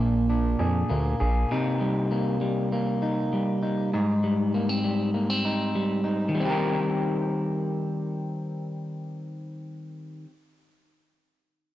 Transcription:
Already playing: analog synth bass A#1, clean electric guitar A#2 D4 G#4
0.00 clean electric guitar A#3
0.29 clean electric guitar D4
0.59 analog synth bass F2, clean electric guitar G#4
0.89 analog synth bass D2, clean electric guitar A#3
1.20 analog synth bass A#1, clean electric guitar G#4
1.51 clean electric guitar C3 D#4
1.81 clean electric guitar G3
2.11 clean electric guitar A#3
2.41 clean electric guitar G3
2.72 clean electric guitar A#3
3.02 clean electric guitar D#4
3.33 clean electric guitar G3
3.63 clean electric guitar D#4
3.93 clean electric guitar G#2 D#4
4.23 clean electric guitar G3
4.54 clean electric guitar A#3
4.69 clean electric guitar C4
4.84 clean electric guitar G3
5.14 clean electric guitar A#3
5.30 clean electric guitar C4
5.45 clean electric guitar D#4
5.75 clean electric guitar G3
6.04 clean electric guitar D#4
6.29 clean electric guitar D#3
6.35 clean electric guitar G3
6.40 clean electric guitar C4
6.45 clean electric guitar G4
6.50 clean electric guitar A#4

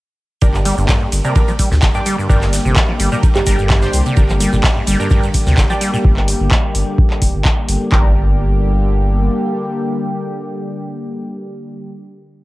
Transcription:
0.41 sub bass G1, analog synth pad D3 G3 A#3 G4, synth stab D4 G4 A#4, kick, ride, shaker
0.54 acid bass G2, clap, shaker
0.65 acid bass G3, open hi-hat, ride, shaker
0.77 sub bass G1, acid bass G2, shaker
0.89 acid bass G2, kick, snare, clap, ride, shaker
1.01 acid bass G2
1.12 sub bass G1, open hi-hat, ride, shaker
1.24 acid bass C3, synth stab D4 G4 A#4, shaker
1.35 acid bass D3, synth stab D4 G4 A#4, kick, ride, shaker
1.48 acid bass F3, ride, shaker
1.59 acid bass G3, kick, open hi-hat, ride, shaker
1.71 sub bass D2, acid bass A#2, snare, shaker
1.82 sub bass G1, kick, snare, clap, ride, shaker
1.94 acid bass G2, synth stab D4 G4 D5, shaker
2.06 acid bass G3, open hi-hat, ride, shaker
2.18 acid bass G2, shaker
2.29 sub bass G1, acid bass G2, synth stab D4 G4 A#4, kick, ride, shaker
2.42 acid bass G2, snare, clap, shaker
2.53 snare, open hi-hat, ride, shaker
2.65 sub bass G1, acid bass C3, shaker
2.76 kick, snare, clap, ride, shaker
2.89 acid bass F3
2.99 sub bass G1, acid bass G3, open hi-hat, ride, shaker
3.12 acid bass A#2, synth stab D4 G4 A#4, shaker
3.23 kick, ride, shaker
3.35 acid bass G2, kalimba G4, clap, shaker
3.46 sub bass G1, acid bass G3, synth stab D4 G4 A#4, kick, open hi-hat, ride, shaker
3.58 acid bass G2, shaker
3.70 acid bass G2, kick, snare, clap, ride, shaker
3.82 acid bass G2, synth stab D4 G4 C5, snare, shaker
3.93 sub bass C2, open hi-hat, ride, shaker
4.06 acid bass C3, ride, shaker
4.17 sub bass G1, acid bass D3, synth stab D4 G4 A#4, kick, ride, shaker
4.29 acid bass F3, clap, shaker
4.40 acid bass G3, open hi-hat, ride, shaker
4.53 sub bass G1, acid bass A#2, shaker
4.64 kick, snare, clap, ride, shaker
4.76 acid bass G2
4.87 sub bass G1, acid bass G3, open hi-hat, ride, shaker
5.00 acid bass G2, synth stab D4 G4 A#4, shaker
5.10 acid bass G2, synth stab D4 G4 A#4, kick, ride, shaker
5.23 acid bass G2, ride, shaker
5.34 kick, open hi-hat, ride, shaker
5.46 sub bass D2, acid bass C3, snare, shaker
5.57 sub bass G1, acid bass D3, kick, snare, clap, ride, shaker
5.70 acid bass F3, synth stab D4 G4 D5, shaker
5.81 acid bass G3, open hi-hat, ride, shaker
5.93 acid bass A#2, shaker
6.05 sub bass G1, kick
6.17 clap
6.28 open hi-hat
6.40 sub bass G1
6.51 kick, clap
6.75 sub bass G1, open hi-hat
6.98 kick
7.10 clap
7.22 sub bass F1, kick, open hi-hat
7.34 sub bass G1
7.45 kick, clap
7.69 sub bass G1, open hi-hat
7.92 sub bass G1, acid bass G2, analog synth pad D3 G3 A#3 G4, synth stab D4 G4 A#4, kick, clap

